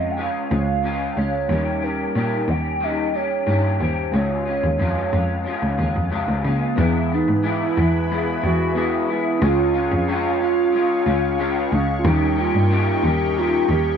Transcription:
Already playing: F2 G#3 C#4 F4 C#5 D#5
0.11 G5
0.17 C#3 G#3 C#4 F4 F5
0.50 C#2 G#3 C#4 F4 C5
0.59 C#5
0.83 C#3 G#3 C#4 F4
1.16 C#2 G#3 C#4 F4 C#5
1.48 D#2 D#3 G3 A#3 C#4 D#4 G4
1.53 A#4
1.82 A#3 C#4 G4 A#4
2.15 A#2 D#3 A#3 C#4 G4
2.47 D#2 C#4 G4 G5
2.52 A#3
2.80 D#3 A#3 C#4 D#5
2.84 G4
3.14 A#3 C#4 G4 C#5
3.46 G2 D#3 A#3 C#4 G4
3.79 D#2 C#4 G4 C5
3.83 A#3
4.11 C#2 C#3 F3 G#3 C#4 F4 C#5
4.16 C#5
4.46 G#3 C#4 F4
4.63 D#2
4.78 F2 C#3 F3 G#3 C#4 F4
5.12 F2 G#3 C#4 F4
5.44 F3 G#3 C#4 F4
5.62 C#2
5.77 D#2 G#3 C#4 F4
5.96 F2
6.10 C#2 C#3 F3 G#3 C#4 F4
6.28 C#2
6.44 C#3 G#3 A#3 C#4 F4
6.75 E2 E3 G#3 B3 E4 G#4 B4 G#5 B5
6.80 B3 G#4
7.12 G#3 B3 D#4
7.28 G#2
7.43 E3 G#3 B3 E4
7.76 E2 G#3 B3 E4
8.09 E3 G#3 B3 E4 G#4
8.42 E2 G#3 B3 E4 F#4
8.74 E3 G#3 B3 E4 G#4
9.08 G#3 B3 E4
9.39 C#2 C#3 G#3 C#4 F4 C#5 F5 C#6
9.44 F4 G#4
9.73 G#3 C#4 F4
9.91 F2
10.07 C#3 G#3 C#4 F4
10.40 G#3 C#4 F4
10.73 C#3 G#3 C#4 F4
11.06 C#2 G#3 C#4 F4
11.38 C#3 G#3 C#4 F4
11.71 C#2 G#3 C#4 F4
11.99 F4
12.03 D#2 D#3 G3 A#3 C#4 D#4 G4 A#4 D#5 G5
12.08 A#4
12.36 A#3 C#4 F4 G4
12.54 G2
12.70 D#3 A#3 C#4 G4
13.02 D#2 A#3 C#4 G4
13.35 D#3 A#3 C#4 F4 G4
13.68 D#2 A#3 C#4 G4

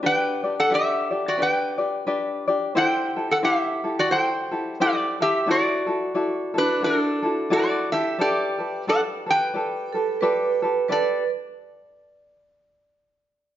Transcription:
0.03 D4 G4 B4 D5 G5
0.44 D4 G4 D5
0.60 A4 F#5
0.70 D4 G4 B4 D5
0.74 G4 E5
1.11 D4 G4 D5
1.28 F#4 D5
1.38 D4 G4 B4 D5
1.42 B4 G5
1.78 D4 G4 D5
2.07 D4 G4 B4 D5
2.48 D4 G4 D5
2.75 E4 G4 A4 C5 G5
3.16 E4 G4 A4
3.31 A4 F#5
3.43 E4 G4 A4 C5 F5
3.62 E5
3.84 E4 G4 A4
3.99 F#4 D5
4.11 E4 G4 A4 C5 G5
4.51 E4 G4 A4
4.80 E4 G4 A4 C5 D5
5.20 E4 G4 A4 E5
5.46 E4 F#4 A4 D5
5.51 F#4 D5
5.87 E4 F#4 A4
6.15 E4 F#4 A4 D5
6.54 E4 F#4 A4
6.58 D4 B4
6.81 E4 F#4 A4 D5
6.86 D4
7.22 E4 F#4 A4
7.50 E4 F#4 A4 D5
7.92 E4 G4 A4 E5
8.18 G4 A4 B4 D5
8.58 G4 A4 B4
8.87 G4 A4 B4 D5 F#5
9.26 G4 A4 B4
9.30 B4 G5
9.54 G4 A4 B4 D5
9.93 G4 A4 B4
10.21 G4 A4 B4 D5
10.62 G4 A4 B4
10.88 G4 A4 B4 D5

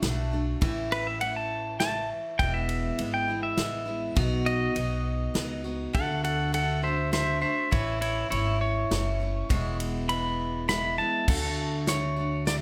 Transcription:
0.02 B1 D3 A3 D4 F#4, snare, ride
0.31 A3 D4 F#4
0.61 A1 A2 E3 A3 C#4 E4, kick, ride
0.92 B4, ride
1.07 E5
1.20 E3 A3 C#4 E4 F#5, ride
1.36 A5
1.79 E3 A3 C#4 E4 A5, snare, ride
2.39 E1 E2 B2 E3 G#3 B3 E4 G5, kick, ride
2.54 E5
2.69 ride
2.98 G#1 E3 G#3 B3 E4, ride
3.14 G5
3.28 E3 G#3 B3 E4
3.43 E5
3.57 A1 E3 G#3 B3 E4, snare, ride
3.85 E3 G#3 B3 E4
4.15 B1 B2 F#3 B3 D#4 F#4, kick, ride
4.46 D#5, ride
4.75 B1 F#3 B3 D#4 F#4, ride
5.34 C#2 F#3 B3 D#4 F#4, snare, ride
5.64 B3 D#4 F#4
5.93 D2 D3 A3 D4 F#4 A4 F#5, kick, ride
6.24 A4 F#5, ride
6.52 D3 A3 D4 F#4 A4 F#5, ride
6.82 A3 D4 F#4 C5 E5
7.12 D3 A3 D4 F#4 C5 E5, snare, ride
7.41 A3 D4 F#4 C5 E5
7.71 A1 A2 E3 A3 C#4 E4 C#5, kick, ride
8.01 E4 C#5, ride
8.30 G#1 E3 A3 C#4 E4 C#5, ride
8.61 C#5
8.91 F#1 E3 A3 C#4 E4, snare, ride
9.20 A3 C#4 E4
9.49 E1 E2 B2 E3 G#3 B3 E4, kick, ride
9.80 ride
10.09 E3 G#3 B3 E4 B5, ride
10.68 E3 G#3 B3 E4 B5, snare, ride
10.98 E3 G#3 B3 E4 A5
11.28 D2 D3 A3 D4 F#4 A4, kick, crash
11.86 D3 A3 D4 F#4 C#5, snare, closed hi-hat
12.16 A3 D4 F#4
12.45 D3 A3 D4 F#4 D5, snare, closed hi-hat

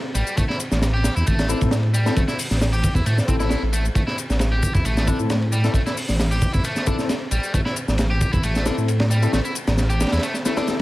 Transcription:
0.15 A1 G3, ride, shaker
0.27 shaker
0.37 A1 A3, kick, ride, shaker
0.49 E4, snare
0.60 ride, shaker
0.71 A1, snare, shaker
0.82 snare, ride, shaker
0.94 G4
1.04 snare, ride, shaker
1.16 E2 E4, ride, shaker
1.26 A1 A3, kick, ride, shaker
1.39 snare, ride, shaker
1.49 C4 D4 E4 A4, ride, shaker
1.61 A2, kick, ride, shaker
1.71 snare, ride, shaker
1.83 ride
1.94 G3, ride, shaker
2.06 C4 E4 A4, snare, shaker
2.16 A1 A3, kick, ride, shaker
2.28 E4, snare, shaker
2.39 open hi-hat, shaker
2.51 A1, snare, shaker
2.61 snare, ride, shaker
2.73 G4, ride, shaker
2.83 kick, ride, shaker
2.95 E2 E4, kick, shaker
3.06 A2 A3, ride, shaker
3.18 snare, shaker
3.28 A1 C4 E4 A4, kick, ride, shaker
3.40 C4 E4 A4, snare, shaker
3.50 E4, snare, ride, shaker
3.63 A1
3.73 A3, ride, shaker
3.85 shaker
3.95 A1 A3, kick, ride, shaker
4.07 E4, snare
4.18 ride, shaker
4.30 A1, snare, shaker
4.39 snare, ride, shaker
4.52 G4
4.63 kick, ride, shaker
4.74 E2 E4, kick, shaker
4.85 A1 A3, ride, shaker
4.97 snare, shaker
5.07 C4 D4 E4 A4, kick, ride, shaker
5.19 A2, shaker
5.30 snare, ride, shaker
5.42 ride
5.52 G3, ride, shaker
5.64 C4 E4 A4, snare, shaker
5.74 A1 A3, kick, ride, shaker
5.86 E4, snare, shaker
5.97 open hi-hat, shaker
6.09 A1, snare, shaker
6.20 snare, ride, shaker
6.31 G4, ride, shaker
6.42 kick, ride, shaker
6.54 E2 E4, kick, shaker
6.64 A3, ride, shaker
6.76 snare, shaker
6.87 C4 D4 E4 A4, kick, ride, shaker
6.99 snare, shaker
7.09 snare, ride, shaker
7.31 A1 G3, ride, shaker
7.43 shaker
7.54 A1 A3, kick, ride, shaker
7.65 E4, snare
7.76 ride, shaker
7.88 A1, snare, shaker
7.98 snare, ride, shaker
8.10 G4
8.21 kick, ride, shaker
8.33 E2 E4, kick, shaker
8.43 A1 A3, ride, shaker
8.55 snare, shaker
8.65 C4 D4 E4 A4, snare, ride, shaker
8.78 A2, shaker
8.88 ride, shaker
9.00 snare, ride
9.10 G3, shaker
9.22 C4 E4 A4, ride, shaker
9.33 A1 A3, snare, ride, shaker
9.45 E4, shaker
9.55 ride, shaker
9.67 A1, snare, ride, shaker
9.77 snare, ride, shaker
9.90 G4, ride, shaker
10.00 snare, ride, shaker
10.07 snare, ride
10.12 E2 E4, snare, ride, shaker
10.17 snare, ride
10.23 A3, ride, shaker
10.34 snare, shaker
10.45 A3 C4 E4 A4, snare, ride, shaker
10.57 C4 D4 E4 A4, snare, ride, shaker
10.68 snare, ride, shaker

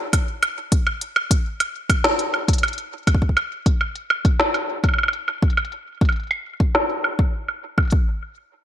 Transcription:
0.13 kick, closed hi-hat, high woodblock
0.43 closed hi-hat, high woodblock
0.72 kick, closed hi-hat
0.87 high woodblock
1.01 closed hi-hat
1.16 high woodblock
1.31 kick, closed hi-hat
1.60 closed hi-hat, high woodblock
1.90 kick, closed hi-hat, high woodblock
2.04 snare
2.19 closed hi-hat
2.34 high woodblock
2.48 kick, closed hi-hat
2.53 closed hi-hat
2.58 closed hi-hat
2.63 closed hi-hat, high woodblock
2.68 closed hi-hat
2.73 closed hi-hat
2.78 closed hi-hat
3.07 kick, closed hi-hat, high woodblock
3.15 kick
3.22 kick
3.29 kick
3.37 closed hi-hat, high woodblock
3.66 kick, closed hi-hat
3.81 high woodblock
3.95 closed hi-hat
4.10 high woodblock
4.25 kick, closed hi-hat
4.40 snare
4.54 closed hi-hat, high woodblock
4.84 kick, closed hi-hat, high woodblock
4.89 high woodblock
4.94 high woodblock
4.98 high woodblock
5.03 high woodblock
5.08 high woodblock
5.13 closed hi-hat
5.28 high woodblock
5.42 kick, closed hi-hat
5.50 closed hi-hat
5.57 closed hi-hat, high woodblock
5.65 closed hi-hat
5.72 closed hi-hat
6.01 kick, closed hi-hat
6.05 closed hi-hat
6.09 closed hi-hat, high woodblock
6.12 closed hi-hat
6.16 closed hi-hat
6.20 closed hi-hat
6.23 closed hi-hat
6.27 closed hi-hat
6.31 closed hi-hat, high woodblock
6.60 kick, closed hi-hat
6.75 snare, high woodblock
6.90 closed hi-hat
7.04 high woodblock
7.19 kick, closed hi-hat
7.48 closed hi-hat, high woodblock
7.78 kick, closed hi-hat, high woodblock
7.80 closed hi-hat
7.83 closed hi-hat
7.85 closed hi-hat
7.88 closed hi-hat
7.90 kick, closed hi-hat

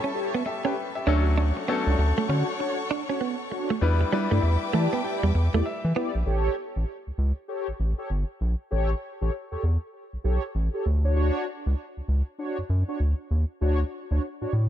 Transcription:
Already playing: G3 A3 B3 C#4 E4 A4 E5 A5 C#6
0.04 C#4
0.15 G4 A4 C#5
0.34 B3
0.46 G4 E5, muted clean electric guitar stroke
0.64 C#4 G4 A4 B4 C#5 G5
0.95 G4 E5
1.06 D2 F#3 A3 C#4 D4 F#4 A4 C#5 F#5 C#6
1.38 D4
1.57 muted clean electric guitar stroke
1.68 F#3 A3 B3 C#4 D4 A4
1.87 C#2 D4 F#4 C#5
1.98 D2, muted clean electric guitar stroke
2.18 A3
2.28 D3 C#4 D4 F#4 C#5
2.59 D4 F#4 C#5, muted clean electric guitar stroke
2.91 D4
3.09 C#4 D4 F#4 C#5
3.21 B3
3.51 D4 F#4 C#5, muted clean electric guitar stroke
3.70 A3
3.81 E2 G3 B3 D4 E4 B4 E5 G5 D6
4.01 muted clean electric guitar stroke
4.12 G3 B3 D4 E4 B4
4.31 G2 A3 E4 G4 D5
4.42 E2, muted clean electric guitar stroke
4.73 E3 A3 E4 G4 D5 A5
4.93 B3 G5
5.03 E4 G4 D5 G5
5.23 E2 G3
5.35 E2, muted clean electric guitar stroke
5.54 E2 A3 E4 G4 D5
5.66 E5
5.85 E3
5.95 B3 E4 G4 D5
6.15 A#1
6.26 A1 G4 A4 C#5
6.76 A1
7.07 C#2
7.18 C#2
7.48 G4 A4 C#5
7.68 A1
7.80 A1
7.98 G4 A4 C#5
8.10 G1
8.41 A#1
8.71 A1 G4 A4 C#5
9.21 A1 G4 A4 C#5
9.52 E2 G4 A4 C#5
9.64 E2
10.13 B1
10.24 B1 G4 A4 C#5
10.55 A1
10.74 G4 A4 C#5
10.86 D2
11.04 D4 F#4 C#5
11.16 D4 F#4 C#5
11.66 C#2
11.97 C#2
12.08 C#2
12.39 D4 F#4 C#5
12.58 F#2
12.70 F#2
12.88 D4 F#4 C#5
13.00 D2
13.31 D#2
13.61 D2 D4 F#4 C#5
14.11 D2 D4 F#4 C#5
14.41 A2 D4 F#4 C#5
14.53 A2

